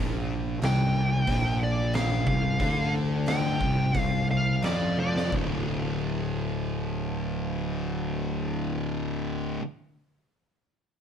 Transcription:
0, 0, Header, 1, 5, 480
1, 0, Start_track
1, 0, Key_signature, -1, "minor"
1, 0, Tempo, 662252
1, 1885, Time_signature, 4, 2, 24, 8
1, 2861, Tempo, 696056
1, 7726, End_track
2, 0, Start_track
2, 0, Title_t, "Lead electric guitar"
2, 0, Program_c, 0, 29
2, 470, Note_on_c, 0, 79, 104
2, 1153, Note_off_c, 0, 79, 0
2, 1186, Note_on_c, 0, 74, 96
2, 1408, Note_off_c, 0, 74, 0
2, 1415, Note_on_c, 0, 77, 92
2, 1640, Note_off_c, 0, 77, 0
2, 1649, Note_on_c, 0, 77, 101
2, 2115, Note_off_c, 0, 77, 0
2, 2381, Note_on_c, 0, 79, 102
2, 2894, Note_off_c, 0, 79, 0
2, 2894, Note_on_c, 0, 77, 102
2, 3080, Note_off_c, 0, 77, 0
2, 3113, Note_on_c, 0, 77, 87
2, 3334, Note_off_c, 0, 77, 0
2, 3344, Note_on_c, 0, 74, 93
2, 3570, Note_off_c, 0, 74, 0
2, 3585, Note_on_c, 0, 74, 88
2, 3811, Note_off_c, 0, 74, 0
2, 7726, End_track
3, 0, Start_track
3, 0, Title_t, "Distorted electric guitar"
3, 0, Program_c, 1, 30
3, 0, Note_on_c, 1, 46, 100
3, 443, Note_off_c, 1, 46, 0
3, 448, Note_on_c, 1, 48, 102
3, 918, Note_off_c, 1, 48, 0
3, 921, Note_on_c, 1, 46, 100
3, 1634, Note_off_c, 1, 46, 0
3, 1640, Note_on_c, 1, 48, 104
3, 1876, Note_off_c, 1, 48, 0
3, 1881, Note_on_c, 1, 50, 100
3, 2605, Note_off_c, 1, 50, 0
3, 2609, Note_on_c, 1, 48, 88
3, 2848, Note_off_c, 1, 48, 0
3, 2856, Note_on_c, 1, 48, 100
3, 3323, Note_off_c, 1, 48, 0
3, 3327, Note_on_c, 1, 53, 97
3, 3793, Note_on_c, 1, 38, 83
3, 3801, Note_off_c, 1, 53, 0
3, 3812, Note_on_c, 1, 45, 95
3, 3822, Note_on_c, 1, 50, 104
3, 6760, Note_off_c, 1, 38, 0
3, 6770, Note_off_c, 1, 45, 0
3, 6775, Note_off_c, 1, 50, 0
3, 7726, End_track
4, 0, Start_track
4, 0, Title_t, "Fingered electric bass"
4, 0, Program_c, 2, 33
4, 0, Note_on_c, 2, 34, 90
4, 422, Note_off_c, 2, 34, 0
4, 444, Note_on_c, 2, 36, 90
4, 894, Note_off_c, 2, 36, 0
4, 925, Note_on_c, 2, 34, 88
4, 1614, Note_off_c, 2, 34, 0
4, 1646, Note_on_c, 2, 36, 86
4, 1869, Note_off_c, 2, 36, 0
4, 1882, Note_on_c, 2, 38, 89
4, 2584, Note_off_c, 2, 38, 0
4, 2614, Note_on_c, 2, 36, 94
4, 2843, Note_off_c, 2, 36, 0
4, 2860, Note_on_c, 2, 36, 92
4, 3304, Note_off_c, 2, 36, 0
4, 3337, Note_on_c, 2, 41, 93
4, 3785, Note_off_c, 2, 41, 0
4, 3807, Note_on_c, 2, 26, 92
4, 6740, Note_off_c, 2, 26, 0
4, 7726, End_track
5, 0, Start_track
5, 0, Title_t, "Drums"
5, 448, Note_on_c, 9, 46, 58
5, 461, Note_on_c, 9, 38, 114
5, 521, Note_off_c, 9, 46, 0
5, 534, Note_off_c, 9, 38, 0
5, 923, Note_on_c, 9, 36, 108
5, 925, Note_on_c, 9, 46, 63
5, 996, Note_off_c, 9, 36, 0
5, 998, Note_off_c, 9, 46, 0
5, 1403, Note_on_c, 9, 46, 58
5, 1416, Note_on_c, 9, 38, 113
5, 1475, Note_off_c, 9, 46, 0
5, 1488, Note_off_c, 9, 38, 0
5, 1538, Note_on_c, 9, 38, 31
5, 1610, Note_off_c, 9, 38, 0
5, 1643, Note_on_c, 9, 36, 99
5, 1716, Note_off_c, 9, 36, 0
5, 1884, Note_on_c, 9, 36, 108
5, 1886, Note_on_c, 9, 46, 58
5, 1957, Note_off_c, 9, 36, 0
5, 1958, Note_off_c, 9, 46, 0
5, 2365, Note_on_c, 9, 46, 54
5, 2378, Note_on_c, 9, 38, 112
5, 2438, Note_off_c, 9, 46, 0
5, 2451, Note_off_c, 9, 38, 0
5, 2614, Note_on_c, 9, 36, 102
5, 2687, Note_off_c, 9, 36, 0
5, 2859, Note_on_c, 9, 46, 51
5, 2861, Note_on_c, 9, 36, 111
5, 2928, Note_off_c, 9, 46, 0
5, 2930, Note_off_c, 9, 36, 0
5, 3328, Note_on_c, 9, 46, 53
5, 3341, Note_on_c, 9, 38, 115
5, 3397, Note_off_c, 9, 46, 0
5, 3410, Note_off_c, 9, 38, 0
5, 3566, Note_on_c, 9, 48, 56
5, 3635, Note_off_c, 9, 48, 0
5, 3702, Note_on_c, 9, 38, 81
5, 3771, Note_off_c, 9, 38, 0
5, 3810, Note_on_c, 9, 36, 100
5, 3879, Note_off_c, 9, 36, 0
5, 7726, End_track
0, 0, End_of_file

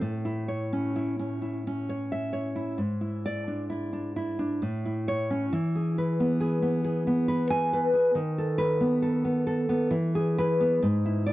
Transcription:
0, 0, Header, 1, 2, 480
1, 0, Start_track
1, 0, Key_signature, 3, "major"
1, 0, Tempo, 938967
1, 6, Time_signature, 3, 2, 24, 8
1, 966, Tempo, 913242
1, 2886, Tempo, 882353
1, 6034, End_track
2, 0, Start_track
2, 0, Title_t, "Nylon-string guitar"
2, 0, Program_c, 0, 24
2, 7, Note_on_c, 0, 45, 56
2, 128, Note_on_c, 0, 64, 44
2, 247, Note_on_c, 0, 73, 44
2, 372, Note_on_c, 0, 61, 43
2, 484, Note_off_c, 0, 64, 0
2, 490, Note_on_c, 0, 64, 44
2, 604, Note_off_c, 0, 61, 0
2, 610, Note_on_c, 0, 61, 39
2, 719, Note_off_c, 0, 64, 0
2, 725, Note_on_c, 0, 64, 43
2, 848, Note_off_c, 0, 61, 0
2, 854, Note_on_c, 0, 61, 44
2, 962, Note_off_c, 0, 73, 0
2, 968, Note_on_c, 0, 73, 47
2, 1086, Note_on_c, 0, 76, 60
2, 1190, Note_off_c, 0, 73, 0
2, 1197, Note_on_c, 0, 73, 49
2, 1277, Note_off_c, 0, 76, 0
2, 1310, Note_off_c, 0, 64, 0
2, 1316, Note_on_c, 0, 64, 44
2, 1425, Note_off_c, 0, 45, 0
2, 1433, Note_on_c, 0, 44, 55
2, 1441, Note_off_c, 0, 64, 0
2, 1441, Note_off_c, 0, 73, 0
2, 1448, Note_off_c, 0, 61, 0
2, 1555, Note_on_c, 0, 64, 42
2, 1684, Note_on_c, 0, 74, 61
2, 1800, Note_on_c, 0, 62, 45
2, 1878, Note_off_c, 0, 74, 0
2, 1910, Note_off_c, 0, 64, 0
2, 1916, Note_on_c, 0, 64, 45
2, 2031, Note_off_c, 0, 62, 0
2, 2037, Note_on_c, 0, 62, 42
2, 2155, Note_off_c, 0, 64, 0
2, 2161, Note_on_c, 0, 64, 47
2, 2273, Note_off_c, 0, 62, 0
2, 2280, Note_on_c, 0, 62, 49
2, 2381, Note_off_c, 0, 44, 0
2, 2401, Note_on_c, 0, 45, 55
2, 2404, Note_off_c, 0, 62, 0
2, 2405, Note_off_c, 0, 64, 0
2, 2525, Note_on_c, 0, 64, 46
2, 2643, Note_on_c, 0, 73, 65
2, 2761, Note_on_c, 0, 61, 45
2, 2835, Note_off_c, 0, 73, 0
2, 2867, Note_off_c, 0, 45, 0
2, 2877, Note_on_c, 0, 52, 61
2, 2882, Note_off_c, 0, 61, 0
2, 2883, Note_off_c, 0, 64, 0
2, 3001, Note_on_c, 0, 68, 49
2, 3125, Note_on_c, 0, 71, 50
2, 3243, Note_on_c, 0, 59, 50
2, 3349, Note_off_c, 0, 68, 0
2, 3355, Note_on_c, 0, 68, 52
2, 3468, Note_off_c, 0, 59, 0
2, 3474, Note_on_c, 0, 59, 42
2, 3587, Note_off_c, 0, 68, 0
2, 3594, Note_on_c, 0, 68, 50
2, 3710, Note_off_c, 0, 59, 0
2, 3717, Note_on_c, 0, 59, 49
2, 3825, Note_off_c, 0, 71, 0
2, 3832, Note_on_c, 0, 71, 52
2, 3951, Note_off_c, 0, 71, 0
2, 3953, Note_on_c, 0, 80, 73
2, 4077, Note_on_c, 0, 71, 53
2, 4148, Note_off_c, 0, 80, 0
2, 4181, Note_off_c, 0, 68, 0
2, 4188, Note_on_c, 0, 68, 50
2, 4292, Note_off_c, 0, 52, 0
2, 4303, Note_on_c, 0, 51, 64
2, 4312, Note_off_c, 0, 68, 0
2, 4317, Note_off_c, 0, 59, 0
2, 4317, Note_off_c, 0, 71, 0
2, 4431, Note_on_c, 0, 69, 49
2, 4539, Note_on_c, 0, 71, 74
2, 4661, Note_on_c, 0, 59, 57
2, 4737, Note_off_c, 0, 71, 0
2, 4773, Note_off_c, 0, 69, 0
2, 4779, Note_on_c, 0, 69, 56
2, 4894, Note_off_c, 0, 59, 0
2, 4900, Note_on_c, 0, 59, 49
2, 5014, Note_off_c, 0, 69, 0
2, 5021, Note_on_c, 0, 69, 55
2, 5136, Note_off_c, 0, 59, 0
2, 5143, Note_on_c, 0, 59, 57
2, 5250, Note_off_c, 0, 51, 0
2, 5260, Note_on_c, 0, 52, 73
2, 5272, Note_off_c, 0, 59, 0
2, 5272, Note_off_c, 0, 69, 0
2, 5393, Note_on_c, 0, 68, 58
2, 5520, Note_on_c, 0, 71, 82
2, 5639, Note_on_c, 0, 59, 57
2, 5715, Note_off_c, 0, 71, 0
2, 5741, Note_off_c, 0, 52, 0
2, 5760, Note_on_c, 0, 44, 72
2, 5761, Note_off_c, 0, 68, 0
2, 5762, Note_off_c, 0, 59, 0
2, 5885, Note_on_c, 0, 64, 57
2, 5999, Note_on_c, 0, 74, 61
2, 6034, Note_off_c, 0, 44, 0
2, 6034, Note_off_c, 0, 64, 0
2, 6034, Note_off_c, 0, 74, 0
2, 6034, End_track
0, 0, End_of_file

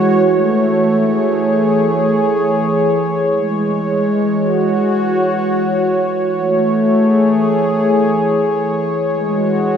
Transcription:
0, 0, Header, 1, 2, 480
1, 0, Start_track
1, 0, Key_signature, 3, "major"
1, 0, Tempo, 500000
1, 9380, End_track
2, 0, Start_track
2, 0, Title_t, "Analog synth pad"
2, 0, Program_c, 0, 89
2, 0, Note_on_c, 0, 52, 82
2, 0, Note_on_c, 0, 56, 91
2, 0, Note_on_c, 0, 66, 86
2, 0, Note_on_c, 0, 73, 71
2, 235, Note_off_c, 0, 56, 0
2, 313, Note_on_c, 0, 57, 66
2, 990, Note_on_c, 0, 68, 73
2, 1326, Note_off_c, 0, 66, 0
2, 2993, Note_off_c, 0, 57, 0
2, 3214, Note_on_c, 0, 56, 62
2, 3868, Note_off_c, 0, 68, 0
2, 4209, Note_on_c, 0, 66, 78
2, 5695, Note_off_c, 0, 56, 0
2, 6097, Note_on_c, 0, 57, 76
2, 6675, Note_on_c, 0, 68, 75
2, 6769, Note_off_c, 0, 66, 0
2, 8392, Note_off_c, 0, 57, 0
2, 8738, Note_on_c, 0, 56, 66
2, 8933, Note_on_c, 0, 66, 68
2, 9380, Note_off_c, 0, 52, 0
2, 9380, Note_off_c, 0, 56, 0
2, 9380, Note_off_c, 0, 66, 0
2, 9380, Note_off_c, 0, 68, 0
2, 9380, Note_off_c, 0, 73, 0
2, 9380, End_track
0, 0, End_of_file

